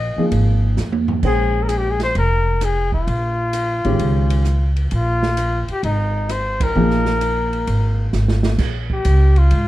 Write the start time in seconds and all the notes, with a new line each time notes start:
Already playing: A#1 D#5
0.17 F3 A#3 D#4 G#4, muted upright bass stroke
0.32 G#1, ride
0.77 F2, snare, hi-hat pedal
0.92 high tom
1.08 floor tom
1.23 A#1 G#3 C#4 G#4 C5 G5, kick, crash
1.63 A#4
1.69 G#4, hi-hat pedal, ride
1.77 G4
1.90 G#4
2.00 C5, snare, ride
2.15 F1 A#4, ride
2.61 G#4, cross-stick, hi-hat pedal, ride
2.92 F4, kick
3.07 A#1, ride
3.53 hi-hat pedal, ride
3.85 A1 D#3 G#3 C#4 G4, ride
3.99 C#2, ride
4.30 ride
4.45 cross-stick, hi-hat pedal
4.76 ride
4.91 A#1 F4, ride
5.23 snare
5.37 hi-hat pedal, ride
5.68 G4, muted upright bass stroke, ride
5.83 G#1 D#4, ride
6.29 C5, cross-stick, hi-hat pedal, ride
6.60 A#4, kick, ride
6.75 A#1 F3 A#3 D#4 G#4
6.90 snare
7.05 snare
7.21 hi-hat pedal, ride
7.53 ride
7.67 G#1, ride
8.13 G#1, snare, hi-hat pedal
8.28 snare
8.43 snare
8.58 A#1, kick, snare, crash
8.90 G4, kick
9.05 C#2, hi-hat pedal, ride
9.36 F4, ride
9.51 G#2, ride